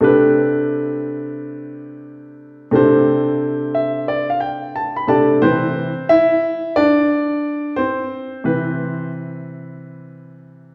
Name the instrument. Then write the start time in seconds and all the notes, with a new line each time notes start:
grand piano
0.01 C3 A3 D4 G4 B4
2.71 C3 A3 D4 G4
2.75 C5
3.75 E5
4.08 D5
4.30 F5
4.40 G5
4.76 A5
4.96 B5
5.07 C3 A3 D4 G4 D5 A5
5.42 C3 E3 C4 B4 C5
6.09 E4 E5
6.76 D4 D5
7.76 C4 C5
8.44 C3 E3 B4